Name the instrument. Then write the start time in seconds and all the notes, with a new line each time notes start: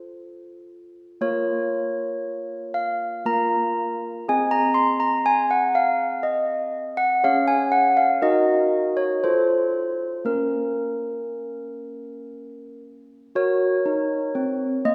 handbells
Already playing: F4 A4 C5
1.21 A#3 F4 A#4 C#5
2.74 F5
3.25 A#3 F4 A#4 A#5
4.28 C4 G#4 D#5 G#5
4.51 A#5
4.74 C6
5.00 A#5
5.26 G#5
5.51 F#5
5.75 F5
6.23 D#5
6.97 F#5
7.24 C#4 G#4 C#5 F5
7.48 G#5
7.72 F#5
7.97 F5
8.22 D#4 F#4 A#4 D#5
8.97 C#5
9.24 F4 A4 C5
10.25 A#3 C#4 A#4
13.35 F#4 A#4 C#5
13.86 D#4
14.35 C4
14.85 A#3 D#5